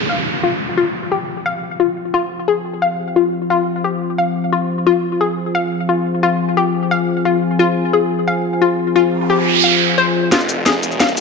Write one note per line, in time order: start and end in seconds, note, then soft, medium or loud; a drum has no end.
0.00 10.28 F4 medium
0.00 10.28 C5 medium
0.00 4.83 G5 medium
0.00 downlifter medium
0.09 0.17 F5 medium
0.43 0.55 F4 medium
0.78 0.85 F4 loud
1.12 1.19 G4 medium
1.46 1.53 F5 medium
1.80 1.91 F4 medium
2.14 2.21 F4 loud
2.48 2.56 G#4 medium
2.82 2.90 F5 medium
3.16 3.27 F4 medium
3.50 3.58 F4 loud
3.84 3.92 G4 medium
4.18 4.26 F5 medium
4.53 4.64 F4 medium
4.87 4.94 F4 loud
4.87 10.28 G#5 medium
5.21 5.28 G#4 medium
5.55 5.62 F5 medium
5.89 6.00 F4 medium
6.23 6.31 F4 loud
6.57 6.65 G4 medium
6.91 6.99 F5 medium
7.25 7.37 F4 medium
7.59 7.67 F4 loud
7.93 8.01 G#4 medium
8.28 8.35 F5 medium
8.62 8.73 F4 medium
8.96 9.03 F4 loud
8.96 noise sweep medium
9.30 9.37 G4 medium
9.64 9.71 F5 medium
9.98 10.09 C5 loud
10.32 11.16 F1 loud
10.32 10.40 F4 loud
10.32 11.20 F4 medium
10.32 11.20 G#4 medium
10.32 11.20 C5 medium
10.32 snare soft
10.32 closed hi-hat loud
10.32 riser medium
10.41 cabasa soft
10.49 closed hi-hat medium
10.49 cabasa medium
10.66 10.74 G#4 medium
10.66 snare soft
10.66 closed hi-hat loud
10.83 closed hi-hat medium
10.83 cabasa medium
10.92 cabasa soft
11.00 11.08 F5 medium
11.00 snare medium
11.00 closed hi-hat medium
11.09 closed hi-hat soft
11.17 11.20 C2 medium
11.17 closed hi-hat medium
11.17 cabasa medium